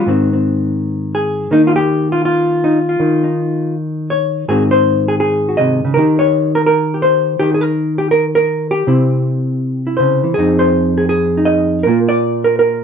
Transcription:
0.00 0.80 F#4 medium
0.06 1.49 G#2 medium
0.06 1.50 D#3 soft
0.06 0.31 C4 soft
0.33 1.51 C4 soft
1.15 1.51 G#4 medium
1.51 2.98 D#3 medium
1.51 2.97 A#3 soft
1.51 1.61 D#4 medium
1.67 1.75 F4 medium
1.76 2.12 G4 medium
2.12 2.24 F4 medium
2.25 2.86 F4 medium
2.64 2.78 D#4 medium
2.89 3.74 F4 medium
3.00 4.48 D#3 medium
3.24 4.49 D#4 soft
4.10 4.48 C#5 medium
4.48 5.95 G#2 medium
4.48 5.96 D#3 soft
4.48 5.96 C4 soft
4.48 5.47 F#4 soft
4.48 4.63 G#4 medium
4.71 5.08 C5 medium
5.08 5.15 G#4 medium
5.20 5.94 G#4 medium
5.49 5.96 F#4 soft
5.57 5.83 C3 medium
5.57 5.95 D#5 medium
5.85 5.97 C#3 medium
5.94 7.39 D#3 medium
5.94 6.18 A#4 medium
5.98 7.41 D#4 soft
5.98 6.94 G4 soft
6.19 6.55 C#5 medium
6.55 6.61 A#4 medium
6.66 7.02 A#4 loud
6.94 7.39 G4 soft
7.02 7.77 C5 medium
7.39 8.87 D#3 medium
7.39 7.54 G4 medium
7.54 7.61 G#4 medium
7.61 7.98 A#4 medium
7.98 8.11 G4 medium
8.11 8.25 A#4 loud
8.35 8.71 A#4 medium
8.71 10.34 G4 loud
8.87 10.36 C3 medium
8.87 10.23 C4 soft
8.87 9.85 E4 soft
9.87 10.36 E4 soft
9.97 10.25 C#3 medium
9.97 10.36 C5 medium
10.24 10.37 E3 medium
10.34 11.86 F2 medium
10.34 10.96 G#4 medium
10.39 11.85 C4 soft
10.39 11.36 D#4 soft
10.59 11.35 C5 medium
10.98 11.08 G#4 medium
11.09 11.83 G#4 medium
11.37 11.85 D#4 soft
11.45 11.84 D#5 medium
11.83 12.84 A#2 medium
11.83 11.99 A#4 medium
11.88 12.84 A#3 soft
11.88 12.83 F4 soft
12.09 12.83 D5 medium
12.44 12.58 A#4 medium
12.59 12.84 A#4 medium

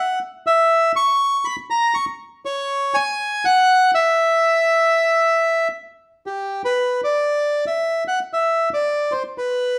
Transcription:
0.00 0.19 F#5 medium
0.47 0.92 E5 medium
0.96 1.46 C#6 medium
1.45 1.56 B5 medium
1.70 1.95 A#5 medium
1.94 2.05 C#6 medium
2.45 2.96 C#5 medium
2.94 3.45 G#5 medium
3.45 3.91 F#5 medium
3.95 5.68 E5 medium
6.27 6.62 G4 soft
6.65 7.01 B4 medium
7.04 7.65 D5 medium
7.67 8.04 E5 medium
8.08 8.19 F#5 medium
8.33 8.69 E5 medium
8.74 9.13 D5 medium
9.12 9.23 C5 medium
9.38 9.79 B4 medium

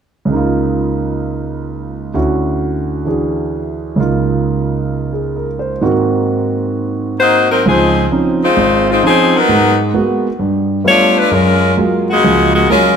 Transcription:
0.25 2.11 C#2 soft
0.25 2.13 C#3 soft
0.31 2.14 A#3 soft
0.31 2.15 D#4 soft
0.36 2.17 F4 medium
2.14 3.98 D2 soft
2.14 3.98 D3 soft
2.14 3.98 C#4 soft
2.14 3.98 E4 soft
2.14 3.06 F#4 soft
3.05 3.97 E3 soft
3.05 3.98 D4 soft
3.05 3.98 F#4 soft
3.05 3.99 G#4 soft
3.96 5.80 C#2 soft
3.96 5.81 C#3 soft
3.96 5.81 A#3 soft
3.96 5.82 D#4 soft
4.00 5.83 F4 soft
5.13 5.45 G#4 soft
5.36 5.71 A#4 soft
5.59 5.91 C5 soft
5.81 7.65 G#2 medium
5.81 7.65 D#3 soft
5.81 7.65 A#3 soft
5.81 7.65 C4 soft
5.81 7.66 F#4 medium
7.20 7.48 A#3 medium
7.20 7.48 D#4 medium
7.20 7.48 F#4 medium
7.20 7.48 C5 loud
7.51 7.65 F#3 medium
7.51 7.64 C4 medium
7.51 7.64 D#4 medium
7.51 7.64 A#4 medium
7.66 8.05 C#2 medium
7.66 8.05 F3 medium
7.66 8.09 F3 medium
7.66 8.09 C4 medium
7.66 8.08 D#4 medium
7.66 8.09 G#4 medium
8.12 8.43 F3 soft
8.12 8.43 C4 soft
8.12 8.44 C#4 soft
8.12 8.44 D#4 soft
8.44 8.85 G#3 medium
8.44 8.85 C4 medium
8.44 8.85 D#4 medium
8.44 8.85 F4 medium
8.57 8.97 G#1 medium
8.90 9.03 G#3 medium
8.90 9.03 C4 medium
8.90 9.03 D#4 medium
8.90 9.03 F4 medium
9.03 9.35 F3 soft
9.03 9.33 F3 medium
9.03 9.35 C4 soft
9.03 9.35 C#4 soft
9.03 9.35 D#4 soft
9.03 9.33 D#4 medium
9.03 9.33 G#4 medium
9.07 9.33 C4 medium
9.36 9.80 F#3 medium
9.36 9.80 B3 medium
9.36 9.81 D#4 medium
9.36 9.80 A#4 medium
9.49 9.88 G#2 medium
9.49 9.88 G#3 medium
9.94 10.26 G#3 soft
9.94 10.26 A#3 soft
9.94 10.26 B3 soft
9.94 10.26 F#4 soft
10.39 10.79 G2 medium
10.84 11.17 G3 soft
10.84 11.17 A3 soft
10.84 11.17 B3 soft
10.84 11.15 D4 medium
10.84 11.18 F4 soft
10.84 11.15 C#5 loud
10.88 11.16 A3 medium
10.88 11.16 F4 medium
11.17 11.33 A3 medium
11.17 11.33 D4 medium
11.17 11.31 F4 medium
11.17 11.32 B4 medium
11.31 11.71 F#2 medium
11.31 11.78 G#3 medium
11.31 11.78 C#4 medium
11.31 11.78 F4 medium
11.31 11.78 A#4 medium
11.77 12.09 F#3 soft
11.77 12.09 G#3 soft
11.77 12.10 A#3 soft
11.77 12.10 F4 medium
12.11 12.52 C#3 medium
12.11 12.52 G#3 medium
12.11 12.52 A#3 medium
12.11 12.52 F#4 medium
12.24 12.63 C#2 medium
12.24 12.63 F3 medium
12.54 12.68 C#3 medium
12.54 12.68 G#3 medium
12.54 12.68 A#3 medium
12.54 12.68 F#4 medium
12.70 12.97 F#3 soft
12.70 12.97 G#3 soft
12.70 12.97 G#3 medium
12.70 12.97 A#3 soft
12.70 12.97 C#4 medium
12.70 12.97 F4 medium
12.70 12.97 F4 soft
12.70 12.97 A#4 medium

